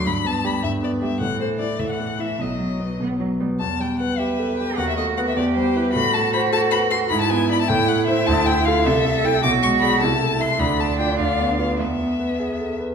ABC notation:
X:1
M:6/8
L:1/16
Q:3/8=102
K:Em
V:1 name="Violin"
b2 a2 b2 e2 d2 e2 | f2 c2 d2 e f3 e2 | ^d6 z6 | a2 g2 f2 e4 g2 |
f e ^d2 f e =d2 c2 B2 | b2 a2 b2 a2 b2 c'2 | b a ^g2 b a =g2 f2 e2 | [K:Am] a2 g2 f2 e4 g2 |
d'2 ^c'2 b2 a4 =c'2 | b2 a2 g2 f4 f2 | e8- e2 z2 |]
V:2 name="Cello"
z4 G,2 z4 G,2 | E,6 E,6 | F,6 B,2 F,2 G,2 | z6 B6 |
F6 G6 | F12 | E6 E6- | [K:Am] E6 A6 |
^F6 E6 | D12 | B,8- B, z3 |]
V:3 name="Grand piano"
G,,2 B,2 G2 G,,2 B,2 G2 | A,,2 A,2 E2 A,,2 A,2 E2 | B,,,2 F,2 B,2 B,,,2 F,2 B,2 | E,,2 G,2 B2 G2 A2 G2 |
^D,,2 A,2 [B,B]2 E,,2 G,2 [EB]2 | A,,2 A,2 c2 A2 B2 A2 | ^G,,2 B,2 [Ed]2 A,,2 A,2 [Ec]2 | [K:Am] D,,2 A,2 [FA]2 C,,2 A,2 [EA]2 |
B,,,2 ^G,2 [^Gd]2 C,,2 A,2 [Ee]2 | D,,2 A,2 [Fd]2 D,,2 B,2 [FB]2 | E,,2 B,2 B2 ^G2 A2 B2 |]